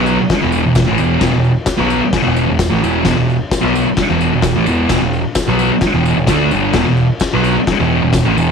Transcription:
Already playing: B1 B2 F#3 B3
0.06 tambourine
0.19 muted distorted electric guitar stroke, muted picked electric bass stroke
0.30 muted picked electric bass stroke, muted distorted electric guitar stroke, kick, snare, tambourine, crash
0.41 E1 E2 B2 E3
0.52 tambourine
0.65 E1 E2 B2
0.75 kick, snare, tambourine, crash
0.87 A2 E3
0.91 A1
0.98 E1 E2 B2 E3, tambourine
1.20 E1 E2 B2, kick, snare, tambourine, crash
1.33 E1 E2 B2
1.44 tambourine
1.66 kick, snare, tambourine, crash
1.78 B1 B2 F#3 B3
1.90 tambourine
2.02 muted distorted electric guitar stroke, muted picked electric bass stroke
2.13 muted picked electric bass stroke, muted distorted electric guitar stroke, kick, snare, tambourine, crash
2.22 E2 B2 E3
2.27 E1
2.36 tambourine
2.46 E1 E2 B2
2.59 kick, snare, tambourine, crash
2.70 A1 A2 E3
2.82 E1 E2 B2 E3, tambourine
3.05 E1 E2 B2, kick, snare, tambourine, crash
3.16 E1 E2 B2
3.30 tambourine
3.51 kick, snare, tambourine, crash
3.61 B1 B2 F#3 B3
3.75 tambourine
3.86 muted picked electric bass stroke, muted distorted electric guitar stroke
3.97 muted picked electric bass stroke, muted distorted electric guitar stroke, kick, snare, tambourine, crash
4.09 E1 E2 B2 E3
4.21 tambourine
4.33 E1 E2 B2
4.42 kick, snare, tambourine, crash
4.56 A1 A2 E3
4.66 E1 E2 B2 E3, tambourine
4.89 E1 E2 B2, kick, snare, tambourine, crash
5.02 E1 E2 B2
5.13 tambourine
5.35 kick, snare, tambourine, crash
5.48 B1 B2 F#3 B3
5.59 tambourine
5.71 muted distorted electric guitar stroke, muted picked electric bass stroke
5.81 muted distorted electric guitar stroke, kick, snare, tambourine, crash
5.94 E1 E2 B2 E3
6.05 tambourine
6.16 E1 E2 B2
6.27 D2 D3 A3 D4, kick, snare, tambourine, crash
6.51 G1 G2 D3 G3, tambourine
6.73 E1 E2 B2, kick, snare, tambourine, crash
6.86 E1 E2 B2
6.97 tambourine
7.20 kick, snare, tambourine, crash
7.33 B1 B2 F#3 B3
7.44 tambourine
7.57 muted distorted electric guitar stroke, muted picked electric bass stroke
7.67 muted picked electric bass stroke, muted distorted electric guitar stroke, kick, snare, tambourine, crash
7.79 E1 E2 B2 E3
8.02 E1 E2 B2
8.13 kick, snare, tambourine, crash
8.25 A1 A2 E3
8.38 E1 E2 B2 E3, tambourine

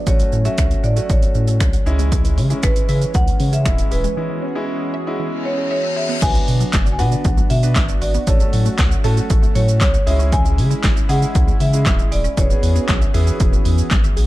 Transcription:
Already playing: F#3
0.07 A1 F#3 A3 C#4 F#4 C#5, kick, closed hi-hat, shaker
0.20 F#3, closed hi-hat, shaker
0.33 A2 C#4, shaker
0.45 A3 C#4 F#4 A4 E5, closed hi-hat, shaker
0.58 C#2, finger snap, kick, closed hi-hat, shaker
0.71 closed hi-hat, shaker
0.84 A2 D5 F#5, shaker
0.96 A3 C#4 F#4, closed hi-hat, shaker
1.03 D5
1.09 A1 F#3 C#5, kick, closed hi-hat, shaker
1.23 closed hi-hat, shaker
1.35 A2 C#4, shaker
1.48 A4, closed hi-hat, shaker
1.60 C2 F#5, finger snap, kick, closed hi-hat, shaker
1.73 F#5, closed hi-hat, shaker
1.86 C#2 E3 G#3 C#4 E4 G#4, shaker
1.99 G#3, closed hi-hat, shaker
2.12 E3, kick, closed hi-hat, shaker
2.25 E3, closed hi-hat, shaker
2.37 C#3 C#4, open hi-hat, shaker
2.50 G#3 C#4 E4 G#4, closed hi-hat, shaker
2.63 G#1 B4, finger snap, kick, closed hi-hat, shaker
2.76 closed hi-hat, shaker
2.89 C#3 B4 E5, open hi-hat, shaker
3.02 closed hi-hat, shaker
3.14 C#2 E3 F#5, kick, closed hi-hat, shaker
3.28 closed hi-hat, shaker
3.40 C#3 C#4, open hi-hat, shaker
3.53 G#4 E5, closed hi-hat, shaker
3.66 D1 G#3 C#4 E4 E5, finger snap, kick, closed hi-hat, shaker
3.78 E5, closed hi-hat, shaker
3.91 D#1 G#4 B4, open hi-hat, shaker
4.04 G#3, closed hi-hat, shaker
4.17 E3 G#3 B3 C#4 E4 F#4 G#4
4.30 E3
4.42 C#4
4.55 G#3 C#4 E4 G#4
4.94 E5
5.07 G#3 C#4 E4
5.19 E3, reverse cymbal
5.45 C#4 C#5
5.58 G#4
5.71 C#5 E5
5.83 E5
5.96 G#4 E5
6.09 B3
6.22 B1 D3 B3 D4 F#4 B4 G#5, kick, closed hi-hat, crash, shaker
6.35 F#3, shaker
6.48 B2 D3, open hi-hat, shaker
6.60 F#3, shaker
6.73 F#1 F#4, kick, snare, clap, closed hi-hat, shaker
6.86 D5, shaker
6.92 G#5
6.99 B2 B3 D4 F#4 B4 F#5, open hi-hat, shaker
7.12 D3, shaker
7.25 B1 D3, kick, closed hi-hat, shaker
7.37 F#3, shaker
7.50 B2 D3 E5, open hi-hat, shaker
7.63 B3 D4 F#4 B4, shaker
7.76 G1, kick, snare, clap, closed hi-hat, shaker
7.89 D5, shaker
8.01 G#1 F#4 D5, open hi-hat, shaker
8.14 B3, shaker
8.27 A1 F#3 A3 C#4 F#4 A4 C#5, kick, closed hi-hat, shaker
8.40 A3 C#4 F#4 A4, shaker
8.53 A2 F#3, open hi-hat, shaker
8.66 A3, shaker
8.78 C#2 A4, kick, snare, clap, closed hi-hat, shaker
8.91 F#5, shaker
9.04 A2 A3 C#4 F#4 A4, open hi-hat, shaker
9.17 F#3, shaker
9.30 A1 F#3, kick, closed hi-hat, shaker
9.43 A3, shaker
9.55 A2 F#3 C#5, open hi-hat, shaker
9.68 shaker
9.81 C2 C#5, kick, snare, clap, closed hi-hat, shaker
9.94 F#5, shaker
10.06 C#2 G#3 C#4 E4 G#4 E5, open hi-hat, shaker
10.19 C#4, shaker
10.32 E3 G#5, kick, closed hi-hat, shaker
10.45 G#3, shaker
10.58 C#3 E3, open hi-hat, shaker
10.71 G#3, shaker
10.83 G#1 G#4, kick, snare, clap, closed hi-hat, shaker
10.96 E5, shaker
11.09 C#3 G#3 C#4 E4 G#4 F#5, open hi-hat, shaker
11.22 E3, shaker
11.35 C#2 E3, kick, closed hi-hat, shaker
11.47 G#3, shaker
11.60 C#3 E3 E5, open hi-hat, shaker
11.73 G#3 C#4 E4 G#4, shaker
11.86 D1, kick, snare, clap, closed hi-hat, shaker
11.99 E5, shaker
12.11 D#1 G#4 D5, open hi-hat, shaker
12.24 C#4, shaker
12.37 E1 E3 B3 C#4 E4 F#4 G#4 C#5, kick, closed hi-hat, shaker
12.50 B3 C#4 E4 G#4, shaker
12.63 E2 E3, open hi-hat, shaker
12.76 B3, shaker
12.88 B1 G#4, kick, snare, clap, closed hi-hat, shaker
13.01 E5, shaker
13.14 E2 B3 C#4 E4 G#4, open hi-hat, shaker
13.27 E3, shaker
13.40 E1 E3, kick, closed hi-hat, shaker
13.53 B3, shaker
13.65 E2 E3, open hi-hat, shaker
13.78 shaker
13.91 A1, kick, snare, clap, closed hi-hat, shaker
14.04 E5, shaker
14.17 A#1 G#4, open hi-hat, shaker

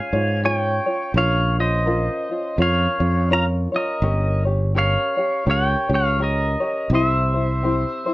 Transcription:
Already playing: C#4 F4 G#4 C#5 F5 G#5
0.13 G#2 C#4 F4 C#5
0.43 C#4 F4 G#4 C#5 G#5
0.57 G5
0.86 C#4 F4 C#5
1.14 A#1 C#4 F4 A#4 C#5 F5
1.58 C#4 F4 C5 D#5
1.86 C#4 F4 A#4
2.31 C#4 F4
2.57 F2 C#4 F4 A#4 C#5
2.62 C#5 F5
2.99 F2 C#4 F4 C#5
3.30 C#4 F4 A#4 C#5 F5 A#5
3.72 C#4 F4 C#5
3.76 A#4 D#5
4.02 G1 C#4 G4 A#4 C#5
4.45 C#4 G4 C#5
4.75 C#4 G4 A#4 C#5 F5
5.17 C#4 G4 C#5
5.46 C#2 C#4 G4 A#4 C#5
5.50 C#5 G5
5.89 C#2 C#4 G4 C#5
5.94 C#5 F5
6.19 C#4 G4 A#4 C#5
6.24 D#5
6.60 C#4 G4 C#5
6.90 C2 C4 E4 G4 C5
6.94 C5 E5
7.34 C4 E4 C5
7.63 C4 E4 G4 C5
8.06 C4 E4 C5

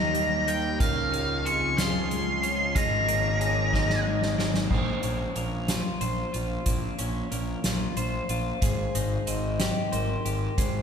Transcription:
Already playing: D#2 D#3 G3 A#3 D#4 A#4 D#5 A#5
0.14 G3, closed hi-hat
0.47 A#3 G5, closed hi-hat
0.80 C#2 C#3 F3 G#3 A#4 F5, kick, closed hi-hat
1.12 C#4, closed hi-hat
1.45 C4 G#4 C#6, closed hi-hat
1.78 F4 C6, snare, closed hi-hat
2.11 G#3, closed hi-hat
2.43 C#4 C#5, closed hi-hat
2.75 G#1 D#3 G#3 A#3 D#5 A#5, kick, closed hi-hat
3.08 A#3, closed hi-hat
3.40 G#4 C#5, closed hi-hat
3.73 D#4 D#5, kick, snare
3.90 snare
4.06 G#3
4.22 snare
4.38 A#3, snare
4.54 snare
4.70 A#1 A#2 C5, kick, crash
5.03 A#1 C#4, closed hi-hat
5.36 A#1 A#3 F5, closed hi-hat
5.68 F4, snare, closed hi-hat
6.01 A#1 C5, closed hi-hat
6.33 A#1 F4, closed hi-hat
6.66 A#1 A#2, kick, closed hi-hat
6.99 A#1 C#4, closed hi-hat
7.31 A#1 A#3, closed hi-hat
7.64 A#1 F4, snare, closed hi-hat
7.97 A#1 C5, closed hi-hat
8.29 A#1 F4, closed hi-hat
8.61 G#1 G#3 C5, kick, closed hi-hat
8.95 G#1 D#4, closed hi-hat
9.27 G#1 C4 D#5, closed hi-hat
9.60 G4, snare, closed hi-hat
9.92 G#1 A#4 C5, closed hi-hat
10.25 G#1 G4, closed hi-hat
10.58 G#1 G#3 C5, kick, closed hi-hat

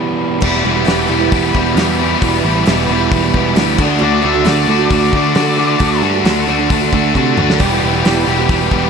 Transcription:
Already playing: E2 B2 E3 G3 B3 E4
0.41 E1 E2 B2 E3 G3 B3 E4 G4 B4, kick, crash
0.63 E1 E2 B2 E3 G3 B3 E4 G4
0.75 E3 G3 B3 E4
0.85 E1 E2 B2 E3 G3 B3 E4, snare, open hi-hat
0.90 G4
1.08 E1 E2 B2 E3 G3 B3 E4
1.12 G4
1.19 E3 G3 B3 E4
1.31 E1 E2 B2 E3 G3 B3 E4 G4, kick, open hi-hat
1.42 E3 G3 B3 E4
1.53 E1 E2 B2 E3 G3 B3 E4 G4, kick
1.75 E2 B2 E3 G3 B3 E4, snare, open hi-hat
1.79 G4
1.99 E2 B2 E3 G3 B3 E4 G4
2.21 E1 E2 B2 E3 G3 B3 E4 G4, kick, open hi-hat
2.43 A1 E2 B2 E3 G3 B3 E4
2.48 G4
2.54 E3 G3 B3 E4
2.65 E1 E2 B2 E3 G3 B3 E4, snare, open hi-hat
2.71 G4
2.88 E1 E2 B2 E3 G3 B3 E4
2.92 G4
3.00 E3 G3 B3 E4
3.11 E1 E2 B2 E3 G3 B3 E4 G4, kick, open hi-hat
3.23 E3 G3 B3 E4
3.32 E2 B2 E3 G3 B3 E4 G4, kick
3.37 E3
3.55 D2 E2 B2 E3 G3 B3 E4 G4, snare, open hi-hat
3.77 D2 D3 A3 D4 F#4, kick, crash
3.81 A4
3.98 D2 D3 A3 D4 F#4
4.03 D3 A3 D4 D5
4.21 D2 D3 A3 D4 F#4
4.28 E5
4.34 A3 D4 F#4
4.45 D2 D3 A3 D4 F#4, snare, open hi-hat
4.49 D5
4.66 D2 D3 A3 D4 F#4
4.78 A3 D4 F#4
4.90 D2 D3 A3 D4 F#4, kick, open hi-hat
4.95 D5
5.01 A3 D4 F#4
5.13 D2 D3 A3 D4 F#4 D5, kick
5.35 D3 A3 D4 F#4, snare, open hi-hat
5.56 D3 A3 D4 F#4
5.79 D2 D3 A3 D4 F#4, kick, open hi-hat
6.02 G2 D3 A3 D4 F#4
6.13 A3 D4 F#4
6.24 D2 D3 A3 D4 F#4, snare, open hi-hat
6.46 D2 D3 A3 D4 F#4
6.58 A3 D4 F#4
6.70 D2 D3 A3 D4 F#4, kick, open hi-hat
6.81 A3 D4 F#4
6.92 D2 D3 A3 D4 F#4, kick
7.15 C3 D3 A3 D4 F#4, kick
7.37 D2 D3 A3 D4 F#4, mid tom
7.50 snare
7.58 E1 E2 B2 E3 G3 B3 E4 G4 B4, kick, open hi-hat, crash
7.80 E1 E2 B2 E3 G3 B3 G4
7.93 E3 G3 B3 G4
8.05 E1 E2 B2 E3 G3 B3 G4, snare, open hi-hat
8.26 E1 E2 B2 E3 G3 B3
8.31 G4
8.39 E3 G3 B3 G4
8.48 E1 E2 B2 E3 G3 B3 G4, kick, open hi-hat
8.60 E3 G3 B3 G4
8.71 E1 E2 B2 E3 G3 B3 G4, kick

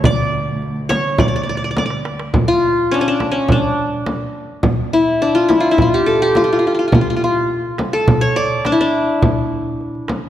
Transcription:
Already playing: D2 A4 C#5
0.04 D5, darbuka dum, frame drum
0.19 darbuka ka
0.62 darbuka ka
0.76 darbuka ka
0.89 C#5, darbuka tek, frame drum
1.04 darbuka ka
1.18 D5, frame drum, darbuka dum
1.28 D5
1.33 D5, darbuka ka
1.43 D5
1.48 D5, darbuka ka
1.57 D5
1.62 D5, darbuka ka
1.71 D5
1.76 D5, darbuka tek, frame drum
1.86 D5
1.90 darbuka ka
2.05 darbuka tek
2.19 darbuka ka
2.34 frame drum, darbuka dum
2.48 F4
2.91 C#4 D4
3.01 C#4
3.06 D4, darbuka ka
3.20 darbuka tek, frame drum
3.32 C#4
3.36 darbuka ka
3.48 D4, frame drum, darbuka dum
3.79 darbuka ka
3.93 darbuka ka
4.06 darbuka tek, frame drum
4.63 frame drum, darbuka dum
4.78 darbuka ka
4.93 E4
5.22 D4
5.35 F4, darbuka ka
5.49 E4, frame drum
5.60 F4, darbuka ka
5.71 E4
5.78 F4, frame drum, darbuka dum
5.94 G4
6.06 A4, darbuka ka
6.21 G4, darbuka ka
6.35 F4, darbuka tek, frame drum
6.44 F4
6.53 F4
6.59 F4
6.67 F4
6.75 F4
6.79 F4
6.88 F4
6.92 F4, frame drum, darbuka dum
7.01 F4
7.07 F4, darbuka ka
7.16 F4
7.24 F4
7.65 darbuka ka
7.78 darbuka tek, frame drum
7.93 A4, darbuka ka
8.08 darbuka dum, frame drum
8.21 C#5
8.36 D5
8.52 darbuka ka
8.65 D4, darbuka tek, frame drum
8.72 E4
8.81 D4
9.22 frame drum, darbuka dum
9.38 darbuka ka
9.80 darbuka ka
9.95 darbuka ka
10.08 darbuka tek, frame drum
10.24 darbuka ka

